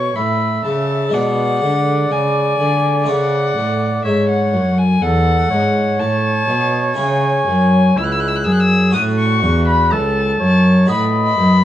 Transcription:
0.00 0.12 B2 medium
0.00 0.15 B2 medium
0.00 1.07 A3 soft
0.00 1.08 E4 soft
0.00 0.16 C#5 medium
0.00 1.09 C#5 soft
0.00 0.17 C#6 medium
0.16 0.61 A2 soft
0.16 0.64 A2 medium
0.16 1.12 E5 medium
0.16 0.65 B5 medium
0.65 1.10 C#3 soft
0.65 1.13 C#3 medium
0.65 1.16 A5 medium
1.09 3.02 G#3 soft
1.09 3.03 D4 soft
1.09 3.03 D5 soft
1.14 1.58 B2 soft
1.14 1.64 B2 medium
1.14 4.01 D5 medium
1.14 2.13 F#5 loud
1.62 2.07 D3 soft
1.62 2.10 D3 medium
2.10 2.58 C#3 medium
2.10 2.55 C#3 medium
2.10 3.10 G#5 medium
2.59 3.09 D3 medium
2.59 3.04 D3 medium
3.04 3.56 C#3 medium
3.04 6.91 A3 soft
3.04 6.92 E4 soft
3.04 6.93 C#5 soft
3.08 3.53 C#3 soft
3.08 4.04 F#5 medium
3.56 4.04 A2 medium
3.56 4.01 A2 medium
4.05 4.55 G#2 medium
4.05 4.50 G#2 soft
4.05 4.73 C#5 medium
4.05 4.29 E5 medium
4.30 4.80 F#5 medium
4.53 5.02 F#2 medium
4.53 4.98 F#2 medium
4.78 5.04 G#5 medium
5.02 5.50 E2 medium
5.02 5.47 E2 medium
5.02 5.48 A4 medium
5.02 6.01 F#5 loud
5.51 6.01 G#2 medium
5.51 5.96 G#2 medium
5.51 7.98 C#5 medium
6.00 6.48 A2 medium
6.00 6.45 A2 medium
6.00 6.97 A5 loud
6.48 6.93 B2 medium
6.48 6.97 B2 medium
6.93 8.88 C#4 medium
6.93 8.89 E4 soft
6.93 8.90 C#5 soft
6.97 7.46 C#3 medium
6.97 7.43 C#3 medium
6.97 7.99 G#5 medium
7.47 7.96 F#2 medium
7.47 7.93 F#2 soft
7.97 8.47 C#2 medium
7.97 8.42 C#2 medium
7.97 8.44 E4 medium
7.97 8.06 E6 medium
8.05 8.14 F#6 medium
8.12 8.22 E6 medium
8.20 8.30 F#6 medium
8.28 8.38 E6 medium
8.36 8.46 F#6 medium
8.44 8.90 F#2 medium
8.44 8.96 F#2 medium
8.44 8.93 G#4 medium
8.44 8.54 E6 medium
8.52 8.62 F#6 medium
8.60 8.93 E6 medium
8.90 10.83 C#4 medium
8.90 10.84 F#4 soft
8.90 9.94 F#4 medium
8.90 10.84 C#5 soft
8.90 9.01 D#6 loud
8.94 9.39 A2 medium
8.94 9.45 A2 medium
9.19 9.67 C#6 loud
9.43 9.88 E2 medium
9.43 9.94 E2 medium
9.68 9.94 B5 medium
9.92 10.37 C#2 medium
9.92 10.40 C#2 medium
9.92 10.39 A4 medium
9.92 10.89 A5 loud
10.40 10.85 F#2 medium
10.40 10.88 F#2 medium
10.40 10.88 C#5 medium
10.85 11.64 D#4 medium
10.85 11.64 F#4 medium
10.85 11.64 B4 soft
10.85 11.57 D#5 medium
10.89 11.37 A2 medium
10.89 11.34 A2 medium
10.89 11.64 B5 loud
11.37 11.64 F#2 medium

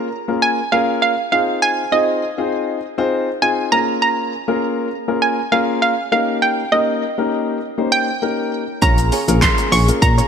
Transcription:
0.28 0.58 A#3 medium
0.28 0.58 C#4 medium
0.28 0.58 F4 medium
0.28 0.58 G#4 medium
0.28 0.58 A#4 medium
0.42 0.73 G#5 loud
0.72 1.12 A#3 medium
0.72 1.12 C#4 medium
0.72 1.12 F4 medium
0.72 1.12 G#4 medium
0.72 1.12 A#4 loud
0.72 1.01 F5 loud
1.02 1.31 F5 loud
1.32 1.81 C4 medium
1.32 1.81 D#4 medium
1.32 1.81 F4 medium
1.32 1.81 G#4 medium
1.32 1.81 C5 medium
1.32 1.63 F5 loud
1.62 1.93 G#5 loud
1.92 2.22 C4 medium
1.92 2.22 D#4 medium
1.92 2.22 F4 medium
1.92 2.22 G#4 medium
1.92 2.22 D#5 medium
1.92 3.08 D#5 medium
2.38 2.77 C4 medium
2.38 2.77 D#4 medium
2.38 2.77 F4 medium
2.38 2.77 G#4 medium
2.38 2.77 C5 medium
2.98 3.28 C4 loud
2.98 3.28 D#4 medium
2.98 3.28 F4 medium
2.98 3.28 G#4 medium
2.98 3.28 C5 loud
3.42 3.72 C4 medium
3.42 3.72 D#4 medium
3.42 3.71 F4 medium
3.42 3.71 G#4 medium
3.42 3.72 C5 medium
3.42 3.73 G#5 loud
3.72 4.32 A#3 medium
3.72 4.32 C#4 medium
3.72 4.32 F4 medium
3.72 4.32 G#4 medium
3.72 4.32 A#4 medium
3.72 4.01 A#5 loud
4.02 4.88 A#5 loud
4.48 4.87 A#3 medium
4.48 4.87 C#4 medium
4.48 4.87 F4 medium
4.48 4.87 G#4 medium
4.48 4.87 A#4 loud
5.08 5.38 A#3 medium
5.08 5.38 C#4 medium
5.08 5.38 F4 medium
5.08 5.38 G#4 medium
5.08 5.38 A#4 medium
5.22 5.53 G#5 loud
5.52 5.92 A#3 medium
5.52 5.92 C#4 medium
5.52 5.92 F4 medium
5.52 5.92 G#4 medium
5.52 5.92 A#4 loud
5.52 5.81 F5 medium
5.82 6.11 F5 loud
6.12 6.61 A#3 medium
6.12 6.61 C#4 medium
6.12 6.61 D#4 medium
6.12 6.61 G4 medium
6.12 6.61 A#4 medium
6.12 6.43 F5 medium
6.42 6.73 G5 loud
6.72 7.02 A#3 medium
6.72 7.02 C#4 medium
6.72 7.02 D#4 medium
6.72 7.02 G4 medium
6.72 7.02 A#4 medium
6.72 7.96 D#5 loud
7.18 7.57 A#3 medium
7.18 7.57 C#4 medium
7.18 7.57 D#4 medium
7.18 7.57 G4 medium
7.18 7.57 A#4 medium
7.78 8.08 A#3 medium
7.78 8.08 C#4 medium
7.78 8.08 D#4 medium
7.78 8.08 G4 medium
7.78 8.08 C5 medium
7.92 8.85 G5 loud
8.22 8.62 A#3 medium
8.22 8.62 C#4 medium
8.22 8.62 D#4 medium
8.22 8.62 G4 medium
8.22 8.63 A#4 medium
8.82 9.11 A#1 loud
8.82 10.28 C#3 medium
8.82 9.12 A#3 medium
8.82 10.28 A#3 medium
8.82 8.98 C#4 medium
8.82 9.12 C#4 medium
8.82 9.12 F4 medium
8.82 8.98 F4 loud
8.82 9.12 G#4 medium
8.82 10.28 G#4 medium
8.82 8.99 G#4 medium
8.82 9.12 A#4 medium
8.82 8.99 C#5 loud
8.82 9.44 A#5 loud
8.82 kick loud
8.82 closed hi-hat medium
8.82 shaker medium
8.98 closed hi-hat medium
8.98 shaker medium
9.12 9.25 C#4 medium
9.12 9.25 F4 medium
9.12 9.25 G#4 medium
9.12 9.25 C#5 medium
9.12 open hi-hat medium
9.12 shaker medium
9.28 9.47 A#1 medium
9.28 9.67 A#3 medium
9.28 9.67 C#4 medium
9.28 9.40 C#4 medium
9.28 9.67 F4 medium
9.28 9.40 F4 medium
9.28 9.67 G#4 medium
9.28 9.39 G#4 medium
9.28 9.67 A#4 loud
9.28 9.39 C#5 medium
9.28 closed hi-hat medium
9.28 shaker medium
9.42 9.73 C6 loud
9.42 kick loud
9.42 snare loud
9.42 clap loud
9.42 closed hi-hat medium
9.42 shaker medium
9.58 muted clean electric guitar stroke soft
9.58 closed hi-hat medium
9.58 shaker medium
9.72 9.91 A#1 loud
9.72 9.88 C#4 medium
9.72 9.88 F4 medium
9.72 9.87 G#4 loud
9.72 9.87 C#5 loud
9.72 9.86 C#6 loud
9.72 open hi-hat medium
9.72 shaker medium
9.88 10.18 A#3 medium
9.88 10.18 C#4 medium
9.88 10.18 F4 medium
9.88 10.18 G#4 medium
9.88 10.18 A#4 medium
9.88 muted clean electric guitar stroke soft
9.88 closed hi-hat medium
9.88 shaker medium
10.02 10.21 A#2 loud
10.02 10.28 A#5 loud
10.02 muted clean electric guitar stroke soft
10.02 kick loud
10.02 closed hi-hat medium
10.02 shaker medium
10.18 10.28 C#4 medium
10.18 10.28 F4 medium
10.18 10.28 G#4 medium
10.18 10.28 C#5 medium
10.18 closed hi-hat medium
10.18 shaker medium

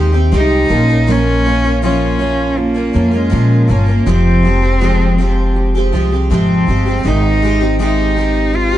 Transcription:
0.00 0.30 D#2 medium
0.00 0.78 D#3 medium
0.00 0.13 G#3 medium
0.00 0.13 C4 medium
0.00 0.12 D#4 medium
0.00 0.11 G4 medium
0.00 0.33 G4 medium
0.12 0.31 C4 soft
0.12 0.31 D#4 soft
0.12 0.32 G4 soft
0.32 0.67 C2 medium
0.32 0.68 G#3 medium
0.32 0.69 C4 medium
0.32 0.70 D#4 medium
0.32 0.71 G4 medium
0.37 1.13 D#4 loud
0.68 2.90 A#1 medium
0.68 0.88 F3 medium
0.68 0.89 A#3 medium
0.68 0.88 C#4 medium
0.68 0.87 F4 medium
0.88 1.07 A#3 soft
0.88 1.07 C#4 soft
0.88 1.07 F4 soft
1.07 1.45 A#2 medium
1.07 1.44 F3 medium
1.07 1.45 A#3 medium
1.07 1.45 C#4 medium
1.07 1.45 F4 medium
1.11 1.84 C#4 loud
1.45 1.64 F3 soft
1.45 1.64 A#3 medium
1.45 1.64 C#4 medium
1.45 1.63 F4 medium
1.64 1.82 A#3 soft
1.64 1.82 C#4 soft
1.64 1.82 F4 soft
1.82 2.20 A#2 medium
1.82 2.18 F3 medium
1.82 2.19 A#3 medium
1.82 2.19 C#4 medium
1.82 2.61 C#4 medium
1.82 2.20 F4 medium
2.19 2.75 F3 soft
2.19 2.76 A#3 soft
2.19 2.74 C#4 medium
2.19 2.73 F4 medium
2.57 3.17 A#3 medium
2.57 3.31 F4 medium
2.74 2.93 A#3 soft
2.74 2.94 C#4 soft
2.74 2.94 F4 soft
2.93 3.29 F2 medium
2.93 3.13 F3 soft
2.93 3.13 A#3 medium
2.93 3.12 C#4 medium
2.93 3.10 F4 medium
3.11 3.30 A#3 soft
3.11 3.30 C#4 soft
3.11 3.30 F4 soft
3.15 3.73 G#3 medium
3.30 3.68 A#2 medium
3.30 3.67 A#2 medium
3.30 3.66 F3 medium
3.30 3.67 A#3 medium
3.30 3.68 C#4 medium
3.30 3.69 F4 medium
3.67 4.04 G1 medium
3.67 3.87 F3 medium
3.67 3.88 A#3 medium
3.67 4.12 A#3 medium
3.67 3.86 C#4 medium
3.67 3.85 F4 medium
3.86 4.07 A#3 soft
3.86 4.06 C#4 soft
3.86 4.06 F4 soft
4.06 5.89 F1 medium
4.06 4.44 F2 medium
4.06 4.44 C3 medium
4.06 4.41 F3 medium
4.06 4.43 G#3 medium
4.06 4.43 C4 medium
4.06 4.44 G4 medium
4.10 5.58 C4 medium
4.43 4.62 F3 medium
4.43 4.63 G#3 medium
4.43 4.62 C4 medium
4.43 4.61 G4 medium
4.62 4.80 F3 soft
4.62 4.80 G#3 soft
4.62 4.80 C4 soft
4.62 4.80 G4 soft
4.80 5.18 F2 medium
4.80 5.18 C3 medium
4.80 5.17 F3 medium
4.80 5.17 G#3 medium
4.80 5.18 C4 medium
4.80 5.19 G4 medium
5.18 5.75 F3 medium
5.18 5.75 G#3 medium
5.18 5.74 C4 medium
5.18 5.74 G4 medium
5.56 6.31 G4 medium
5.75 5.91 F3 soft
5.75 5.92 G#3 soft
5.75 5.93 C4 soft
5.75 5.93 G4 medium
5.92 6.28 C2 medium
5.92 6.12 F3 medium
5.92 6.12 G#3 medium
5.92 6.11 C4 medium
5.92 6.10 G4 medium
6.11 6.30 F3 soft
6.11 6.30 G#3 soft
6.11 6.30 C4 soft
6.11 6.30 G4 soft
6.30 6.65 G#1 medium
6.30 6.68 F2 medium
6.30 6.68 C3 medium
6.30 6.66 F3 medium
6.30 6.67 G#3 medium
6.30 6.68 C4 medium
6.30 7.08 C4 medium
6.30 6.68 G4 medium
6.67 7.02 G1 medium
6.67 6.86 F3 soft
6.67 6.86 G#3 medium
6.67 6.86 C4 medium
6.67 6.85 G4 medium
6.86 7.03 F3 soft
6.86 7.02 G#3 soft
6.86 7.03 C4 soft
6.86 7.04 G4 soft
7.03 8.78 G#1 medium
7.03 8.78 D#3 medium
7.03 7.41 G#3 medium
7.03 7.42 C4 medium
7.03 7.43 D#4 medium
7.03 7.81 D#4 medium
7.03 7.43 G4 medium
7.42 7.61 G#3 medium
7.42 7.61 C4 medium
7.42 7.61 D#4 medium
7.42 7.59 G4 medium
7.61 7.78 C4 soft
7.61 7.79 D#4 soft
7.61 7.80 G4 soft
7.79 8.15 G#3 medium
7.79 8.16 C4 medium
7.79 8.17 D#4 medium
7.79 8.57 D#4 medium
7.79 8.17 G4 medium
8.17 8.73 G#3 medium
8.17 8.73 C4 soft
8.17 8.72 D#4 soft
8.17 8.71 G4 medium
8.54 8.78 F4 medium
8.54 8.78 G4 medium
8.72 8.78 C4 soft
8.72 8.78 D#4 soft
8.72 8.78 G4 soft

